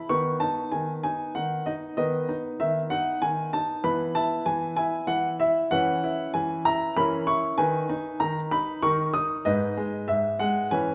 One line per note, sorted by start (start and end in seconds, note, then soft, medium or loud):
0.09 0.40 D#3 medium
0.09 1.94 B3 soft
0.09 1.94 B4 soft
0.09 0.38 C#6 medium
0.40 0.72 D#4 soft
0.40 0.69 A5 medium
0.72 1.03 D#3 soft
0.72 0.91 G#5 medium
1.03 1.35 D#4 soft
1.03 1.32 G#5 medium
1.35 1.66 D#3 soft
1.35 1.67 F#5 medium
1.66 1.97 D#4 soft
1.66 1.96 D#5 medium
1.97 2.28 D#3 medium
1.97 3.81 B3 soft
1.97 3.81 B4 soft
1.97 2.35 D#5 medium
2.29 2.59 D#4 soft
2.60 2.91 D#3 medium
2.60 2.79 E5 medium
2.90 3.22 D#4 medium
2.90 3.22 F#5 medium
3.22 3.53 D#3 soft
3.22 3.50 G#5 medium
3.53 3.84 D#4 soft
3.53 3.85 A5 medium
3.84 4.15 E3 medium
3.84 5.68 B3 soft
3.84 5.68 B4 soft
3.84 4.15 B5 medium
4.15 4.46 E4 medium
4.15 4.47 A5 medium
4.46 4.77 E3 medium
4.46 4.75 G#5 medium
4.76 5.08 E4 medium
4.76 5.09 G#5 medium
5.07 5.39 E3 medium
5.07 5.27 F#5 medium
5.40 5.71 E4 medium
5.40 5.72 E5 medium
5.71 6.02 E3 medium
5.71 6.93 C#4 soft
5.71 6.92 B4 soft
5.71 6.30 F#5 loud
6.04 6.34 E4 medium
6.34 6.65 E3 medium
6.34 6.62 G#5 medium
6.65 6.96 E4 medium
6.65 6.93 A#5 medium
6.97 7.27 E3 medium
6.97 7.54 C#4 soft
6.97 7.54 A#4 soft
6.97 7.27 B5 loud
7.27 7.57 E4 medium
7.27 7.58 C#6 loud
7.58 7.88 D#3 medium
7.58 7.88 D#4 soft
7.58 8.79 B4 soft
7.58 8.20 G#5 medium
7.89 8.20 D#4 medium
8.20 8.51 D#3 medium
8.20 8.39 A#5 medium
8.51 8.81 D#4 medium
8.51 8.83 B5 medium
8.83 9.13 D#3 medium
8.83 9.13 D#4 soft
8.83 9.42 A#4 soft
8.83 9.14 C#6 loud
9.14 9.44 D#4 medium
9.14 9.33 D#6 medium
9.45 9.76 G#2 medium
9.45 10.68 D#4 soft
9.45 10.68 B4 soft
9.45 10.08 D#5 medium
9.77 10.08 G#3 medium
10.08 10.39 G#2 medium
10.08 10.36 E5 medium
10.39 10.71 G#3 medium
10.39 10.72 F#5 medium
10.71 10.95 E3 medium
10.71 10.95 C#4 soft
10.71 10.95 B4 soft
10.71 10.91 G#5 medium